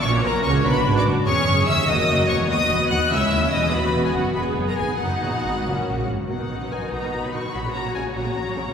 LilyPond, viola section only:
\new Staff \with { instrumentName = "Viola section" } { \clef bass \time 6/8 \key b \dorian \tempo 4. = 96 << { fis'4. fis'4. | \key b \major gis'4. fis'4. | fis'4. e'4. | fis'4. gis'4. |
dis'4. cis'4 r8 | dis'2. | fis'2. | } \\ { cis'4. d'4. | cis'4. ais4. | b4. cis'4. | b4. b4. |
b4. ais4 r8 | fis16 dis16 dis16 fis16 dis16 dis16 fis16 dis16 dis16 fis16 dis16 dis16 | fis16 cis16 cis16 fis16 cis16 cis16 fis16 cis16 cis16 fis16 cis16 cis16 | } >> }